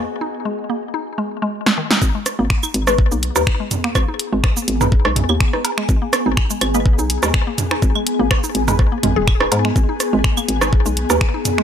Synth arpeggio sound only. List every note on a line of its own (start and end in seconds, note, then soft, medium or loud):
0.21 0.26 D#4 medium
0.45 0.49 G#3 medium
0.70 0.73 A#3 medium
0.94 0.99 D#4 medium
1.18 1.21 G#3 medium
1.42 1.45 G#3 loud
1.66 1.70 G#3 loud
1.78 1.80 D#3 loud
1.91 1.96 D#4 loud
2.15 2.18 G#3 medium
2.39 2.42 A#3 medium
2.63 2.68 D#4 medium
2.87 2.91 G#3 medium
3.12 3.15 A#3 medium
3.36 3.41 D#4 medium
3.60 3.63 G#3 medium
3.84 3.88 A#3 medium
4.08 4.13 D#4 medium
4.33 4.36 G#3 medium
4.57 4.60 A#3 medium
4.81 4.86 D#4 medium
5.05 5.08 G#3 medium
5.29 5.33 A#3 medium
5.53 5.58 D#4 medium
5.78 5.81 G#3 medium
6.02 6.05 A#3 medium
6.26 6.31 D#4 medium
6.50 6.54 G#3 medium
6.74 6.78 A#3 medium
6.99 7.04 D#4 medium
7.23 7.26 G#3 medium
7.47 7.50 A#3 medium
7.71 7.76 D#4 medium
7.95 7.99 G#3 medium
8.20 8.23 A#3 medium
8.44 8.49 D#4 medium
8.68 8.71 G#3 medium
8.92 8.95 A#3 medium
9.03 9.06 G#3 medium
9.16 9.18 G#4 loud
9.41 9.44 D#4 medium
9.52 9.56 G#3 medium
9.65 9.68 G#3 medium
9.89 9.94 D#4 medium
10.13 10.16 G#3 medium
10.37 10.41 A#3 medium
10.61 10.66 D#4 medium
10.86 10.89 G#3 medium
11.10 11.13 A#3 medium
11.34 11.39 D#4 medium
11.58 11.62 G#3 medium